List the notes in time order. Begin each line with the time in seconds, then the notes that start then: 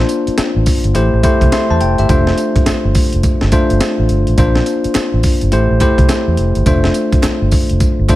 Already playing: A#3 D4 F4 C5
0.09 closed hi-hat, tambourine
0.27 muted fingered electric bass stroke, closed hi-hat
0.38 muted fingered electric bass stroke, snare, closed hi-hat, tambourine
0.56 A1
0.66 kick, open hi-hat, tambourine
0.84 G1, closed hi-hat
0.95 A1 A3 E4 G4 C5, closed hi-hat, tambourine
1.13 A1
1.23 A3 E4 G4 C5, kick, closed hi-hat, tambourine
1.41 C2, kick, closed hi-hat
1.52 E5 C6, snare, closed hi-hat, tambourine
1.70 E2 C5 A5
1.81 F1 G5, closed hi-hat
1.98 G1 G4 E5, closed hi-hat
2.09 F1 A3 D4 F4 C5, kick, closed hi-hat, tambourine
2.27 snare
2.38 closed hi-hat, tambourine
2.56 muted fingered electric bass stroke, kick, closed hi-hat
2.66 muted fingered electric bass stroke, snare, closed hi-hat, tambourine
2.85 G1
2.95 kick, open hi-hat, tambourine
3.13 F1, closed hi-hat
3.23 kick, closed hi-hat, tambourine
3.41 G1, snare
3.52 A3 D4 F4 C5, kick, closed hi-hat, tambourine
3.70 G1, closed hi-hat
3.80 snare, closed hi-hat, tambourine
3.99 A1
4.09 G1, closed hi-hat
4.27 A1, closed hi-hat
4.38 A#1 A#3 D4 F4 C5, kick, closed hi-hat, tambourine
4.55 snare
4.66 closed hi-hat, tambourine
4.84 muted fingered electric bass stroke, closed hi-hat
4.95 muted fingered electric bass stroke, snare, clap, closed hi-hat, tambourine
5.13 A1
5.23 kick, open hi-hat, tambourine
5.41 G1, closed hi-hat
5.52 A1 A3 E4 G4 C5, closed hi-hat, tambourine
5.71 A1
5.80 A3 E4 G4 C5, kick, clap, closed hi-hat, tambourine
5.98 C2, kick, closed hi-hat
6.09 snare, clap, closed hi-hat, tambourine
6.28 E2
6.37 F1, closed hi-hat
6.55 G1, closed hi-hat
6.66 F1 A3 D4 F4 C5, kick, closed hi-hat, tambourine
6.84 snare
6.94 closed hi-hat, tambourine
7.12 muted fingered electric bass stroke, kick, closed hi-hat
7.23 muted fingered electric bass stroke, snare, clap, closed hi-hat, tambourine
7.42 G1
7.51 kick, open hi-hat, tambourine
7.70 F1, closed hi-hat
7.80 kick, closed hi-hat, tambourine
7.99 G1
8.09 A3 D4 F4 C5, kick, clap, closed hi-hat, tambourine